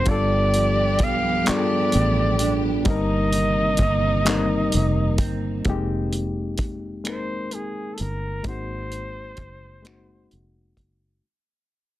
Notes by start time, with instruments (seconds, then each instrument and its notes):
Already playing: clean electric guitar F#3 A#3 C4, flugelhorn C5
0.06 fingered electric bass G1, clean electric guitar G2, string section F3 B3 G4, reed electric piano G3 B3 D4 F4, flugelhorn D5, kick, closed hi-hat
0.11 reed electric piano A4
0.54 clean electric guitar F3, closed hi-hat
0.99 fingered electric bass B1, clean electric guitar B3, kick, closed hi-hat
1.04 flugelhorn F5
1.45 clean electric guitar F3, reed electric piano G3 B3 D4 F4, flugelhorn D5, muted fingered electric bass stroke, clap, closed hi-hat
1.50 reed electric piano G#4
1.56 reed electric piano A4
1.92 fingered electric bass A1, clean electric guitar B3, closed hi-hat
2.39 clean electric guitar D4, closed hi-hat
2.85 fingered electric bass G1, clean electric guitar G2, string section C3 A#3 D#4, reed electric piano G3 A#3 C4, flugelhorn D#5, kick, closed hi-hat
2.89 reed electric piano D#4 A#4
3.33 clean electric guitar D#3, closed hi-hat
3.77 fingered electric bass G1, clean electric guitar A#3, kick, closed hi-hat
4.25 clean electric guitar D#3, reed electric piano G3 A#3 C4 D#4, clap, closed hi-hat
4.29 reed electric piano A#4
4.72 fingered electric bass F1, clean electric guitar A#3, closed hi-hat
5.18 fingered electric bass G1, clean electric guitar C4, kick, closed hi-hat
5.65 fingered electric bass F1, reed electric piano G3 A#3 C4 D#4, kick, closed hi-hat
5.70 reed electric piano G#3 G4
6.13 closed hi-hat
6.58 kick, closed hi-hat
7.04 reed electric piano G#3 A#3 C4 D#4, finger snap, closed hi-hat
7.08 reed electric piano A#4, flugelhorn C5
7.51 flugelhorn G#4, closed hi-hat
7.94 flugelhorn A4, closed hi-hat
8.00 fingered electric bass G1, flugelhorn A#4
8.43 fingered electric bass G#1, reed electric piano G#3 A#3 C4 D#4, kick, closed hi-hat
8.47 reed electric piano F#4, flugelhorn C5
8.92 closed hi-hat
9.37 fingered electric bass F#1, kick, closed hi-hat
9.82 reed electric piano G#3 A#3 C4 D#4, closed hi-hat
9.87 reed electric piano F#4, finger snap
10.31 fingered electric bass F1, closed hi-hat
10.77 fingered electric bass F#1, kick, closed hi-hat